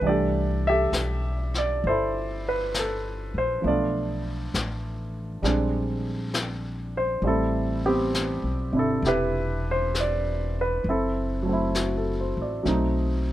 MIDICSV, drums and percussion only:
0, 0, Header, 1, 2, 480
1, 0, Start_track
1, 0, Key_signature, 0, "major"
1, 0, Tempo, 902256
1, 18, Time_signature, 4, 2, 24, 8
1, 7089, End_track
2, 0, Start_track
2, 0, Title_t, "Drums"
2, 18, Note_on_c, 9, 25, 24
2, 494, Note_on_c, 9, 38, 30
2, 494, Note_on_c, 9, 44, 38
2, 547, Note_off_c, 9, 38, 0
2, 547, Note_off_c, 9, 44, 0
2, 820, Note_on_c, 9, 38, 17
2, 873, Note_off_c, 9, 38, 0
2, 974, Note_off_c, 9, 25, 0
2, 974, Note_on_c, 9, 25, 23
2, 1459, Note_on_c, 9, 38, 32
2, 1459, Note_on_c, 9, 44, 39
2, 1512, Note_off_c, 9, 38, 0
2, 1512, Note_off_c, 9, 44, 0
2, 1937, Note_off_c, 9, 25, 0
2, 1937, Note_on_c, 9, 25, 27
2, 2417, Note_on_c, 9, 38, 32
2, 2417, Note_on_c, 9, 44, 36
2, 2470, Note_off_c, 9, 38, 0
2, 2470, Note_off_c, 9, 44, 0
2, 2894, Note_off_c, 9, 25, 0
2, 2894, Note_on_c, 9, 25, 31
2, 2894, Note_on_c, 9, 38, 20
2, 2947, Note_off_c, 9, 38, 0
2, 3371, Note_on_c, 9, 38, 33
2, 3371, Note_on_c, 9, 44, 36
2, 3425, Note_off_c, 9, 38, 0
2, 3425, Note_off_c, 9, 44, 0
2, 3853, Note_off_c, 9, 25, 0
2, 3853, Note_on_c, 9, 25, 29
2, 4332, Note_on_c, 9, 38, 30
2, 4332, Note_on_c, 9, 44, 38
2, 4385, Note_off_c, 9, 38, 0
2, 4385, Note_off_c, 9, 44, 0
2, 4812, Note_off_c, 9, 25, 0
2, 4812, Note_on_c, 9, 25, 24
2, 4812, Note_on_c, 9, 38, 21
2, 4865, Note_off_c, 9, 38, 0
2, 5291, Note_on_c, 9, 38, 30
2, 5291, Note_on_c, 9, 44, 36
2, 5344, Note_off_c, 9, 38, 0
2, 5344, Note_off_c, 9, 44, 0
2, 5772, Note_off_c, 9, 25, 0
2, 5772, Note_on_c, 9, 25, 27
2, 6249, Note_on_c, 9, 38, 28
2, 6249, Note_on_c, 9, 44, 35
2, 6302, Note_off_c, 9, 38, 0
2, 6302, Note_off_c, 9, 44, 0
2, 6732, Note_off_c, 9, 25, 0
2, 6732, Note_on_c, 9, 25, 30
2, 6732, Note_on_c, 9, 38, 19
2, 6786, Note_off_c, 9, 38, 0
2, 7089, Note_off_c, 9, 25, 0
2, 7089, End_track
0, 0, End_of_file